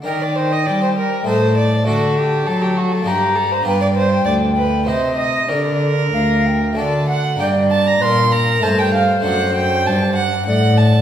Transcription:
0.02 harpsichord D#3 D4 A#4, cello D#3, violin A#4, recorder G5
0.22 violin D5
0.36 violin C5
0.52 violin D#5
0.66 cello G3, harpsichord G3, violin D5
0.83 violin C5
0.97 violin A#4
1.23 cello A2, harpsichord A3 D#4 A4, violin C5, recorder A5
1.28 harpsichord A2
1.57 violin D5
1.84 cello D3, harpsichord A3 D4 A4, violin F#4, recorder A5
1.88 harpsichord D3
2.17 violin G4
2.47 cello F#3, harpsichord F#3, violin A4
2.62 violin G4
2.77 violin F#4
2.92 violin A4
3.02 harpsichord A#3 D4 G4
3.06 cello G2, harpsichord G2, violin G4, recorder A#5
3.35 violin A4
3.52 violin C5
3.62 harpsichord B3 F4 G4, violin B4
3.66 cello G2, harpsichord G2, recorder G5
3.81 violin D5
3.96 violin C5
4.25 harpsichord D2, cello D2, violin D5
4.56 violin B4
4.85 cello C3, harpsichord C3 D#4 G4, violin C5, recorder D#5
5.17 violin D#5
5.47 cello D3, harpsichord D3 D4 G4, violin A#4, recorder D5
6.13 cello D2, harpsichord D2, recorder F5
6.46 recorder G5
6.73 cello D3, harpsichord A3 D4 F#4, recorder A5
6.77 harpsichord D3, violin D5
7.08 recorder F#5, violin F#5
7.36 harpsichord A#3 D4 G4, recorder D5, violin G5
7.40 harpsichord G2, cello G2
7.71 violin A5
7.87 violin A#5
8.01 cello A#2, harpsichord A#2, recorder A#4 B4, violin C6
8.32 violin A#5
8.60 cello G2, harpsichord A3 D#4 C5, recorder C5, violin A5
8.64 harpsichord G2
8.79 violin G5
8.94 violin F5
9.20 harpsichord A3 D4 C5, violin F#5
9.25 cello F#2, harpsichord F#2
9.55 violin G5
9.86 cello G2, harpsichord G2, violin A5
10.16 violin F#5
10.46 cello A2, harpsichord A2, recorder D5, violin F#5
10.77 violin A5

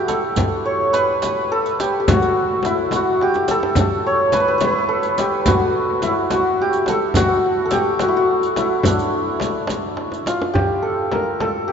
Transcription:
Already playing: santur E4 G4 B4
0.08 santur A4, riq, tombak tek, frame drum
0.36 riq, tombak dum, frame drum
0.66 santur C#5
0.93 santur B4, riq, tombak tek
1.22 riq, tombak tek, frame drum
1.52 santur A4
1.66 riq
1.80 santur G4, riq, tombak tek, frame drum
2.00 santur G4
2.08 santur F#4, riq, frame drum, tombak dum
2.22 riq
2.63 santur E4, riq, tombak tek, frame drum
2.91 riq, tombak tek, frame drum
2.96 santur F#4
3.21 santur G4, tombak tek
3.34 riq, tombak ka
3.48 santur A4, riq, tombak tek, frame drum
3.63 tombak ka
3.75 riq, frame drum, tombak dum
4.07 santur C#5
4.32 santur B4, riq, tombak tek, frame drum
4.40 santur B4
4.48 santur B4
4.58 santur B4, riq, tombak tek, frame drum
4.64 santur B4
4.69 santur B4
4.78 santur B4
4.89 santur A4
5.03 riq, tombak ka
5.18 santur G4, riq, tombak tek, frame drum
5.46 santur F#4, riq, frame drum, tombak dum
6.02 santur E4, riq, frame drum
6.30 santur F#4, riq, tombak tek, frame drum
6.62 santur G4
6.73 riq, tombak ka
6.86 santur A4, riq, tombak tek, frame drum
7.14 santur F#4, riq, tombak dum, frame drum
7.66 santur A4
7.71 santur G4, riq, tombak tek, frame drum
7.99 santur F#4, riq, tombak tek, frame drum
8.08 santur E4
8.17 santur F#4
8.42 riq, tombak ka
8.56 santur E4, riq, tombak tek, frame drum
8.83 santur D4, riq, frame drum, tombak dum
8.99 riq, tombak ka
9.40 riq, tombak tek, frame drum
9.67 riq, tombak tek, frame drum
9.97 tombak tek
10.12 riq, tombak ka
10.26 santur F4, riq, tombak tek, frame drum
10.42 tombak ka
10.54 santur G4, tombak dum, frame drum
10.70 tombak ka
10.82 santur A4
11.12 santur A#4, tombak tek, frame drum
11.40 santur A4, tombak tek, frame drum
11.68 santur G4

